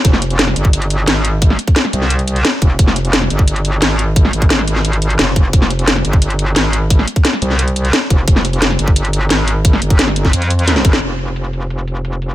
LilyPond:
<<
  \new Staff \with { instrumentName = "Wobble bass" } { \clef bass \time 4/4 \key f \minor \tempo 4 = 175 f,,4. g,,4. aes,,4~ | aes,,8 r4 c,4. r8 f,,8 | f,,4. g,,4. aes,,4~ | aes,,8 aes,,2~ aes,,8 f,,4 |
f,,4. g,,4. aes,,4~ | aes,,8 r4 c,4. r8 f,,8 | f,,4. g,,4. aes,,4~ | aes,,8 g,,4. f,4. aes,,8 |
f,,1 | }
  \new DrumStaff \with { instrumentName = "Drums" } \drummode { \time 4/4 <hh bd>16 sn16 hh16 hh16 <hh sn>16 sn16 hh16 bd16 hh16 hh16 hh8 <hh sn>8 hh8 | <hh bd>16 sn16 hh16 <hh bd>16 <hh sn>16 sn16 hh16 sn16 hh16 hh16 hh16 hh16 <hh sn>8 <hh bd>8 | <hh bd>16 sn16 hh16 hh16 <hh sn>16 sn16 hh16 bd16 hh16 hh16 hh8 <hh sn>8 hh8 | <hh bd>16 sn16 hh16 <hh bd>16 <hh sn>16 sn16 hh16 sn16 hh16 hh16 hh16 hh16 <hh sn>8 <hh bd>8 |
<hh bd>16 sn16 hh16 hh16 <hh sn>16 sn16 hh16 bd16 hh16 hh16 hh8 <hh sn>8 hh8 | <hh bd>16 sn16 hh16 <hh bd>16 <hh sn>16 sn16 hh16 sn16 hh16 hh16 hh16 hh16 <hh sn>8 <hh bd>8 | <hh bd>16 sn16 hh16 hh16 <hh sn>16 sn16 hh16 bd16 hh16 hh16 hh8 <hh sn>8 hh8 | <hh bd>16 sn16 hh16 <hh bd>16 <hh sn>16 sn16 hh16 <bd sn>16 hh16 hh16 hh16 hh16 <hh sn>16 sn16 <hh bd>16 sn16 |
hh8 hh16 hh16 hh8 hh8 hh16 hh16 hh8 hh8 hh8 | }
>>